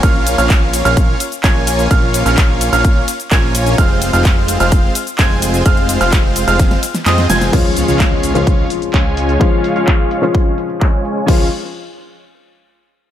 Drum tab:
CC |----------------|----------------|----------------|----------------|
RD |x-x-x-x-x-x-x-x-|x-x-x-x-x-x-x-x-|x-x-x-x-x-x-x-x-|x-x-x-x-x-x-x-x-|
HH |x-oxx-oxx-oxx-ox|x-oxx-oxx-oxx-ox|x-oxx-oxx-oxx-ox|xxoxx-oxxxoxxxox|
SH |x-xxx-xxx-xxx-xx|x-xxx-xxx-xxx-xx|x-xxx-xxx-xxx-xx|x-xxx-xxx-xxx-xx|
CP |----x-------x---|---xx-------x---|----x-------x---|---xx-------x---|
SD |----------------|----------------|----------------|--------oo-ooooo|
BD |o---o---o---o---|o---o---o---o---|o---o---o---o---|o---o---o-------|

CC |x---------------|----------------|x---------------|
RD |----------------|----------------|----------------|
HH |x-oxx-oxx-oxx-ox|x-oxx-ox--ox--ox|----------------|
SH |x-xxx-xxx-xxx-xx|x-xx--xx--xx--xx|----------------|
CP |----x-------x---|----x-------x---|----------------|
SD |----------------|----------------|----------------|
BD |o---o---o---o---|o---o---o---o---|o---------------|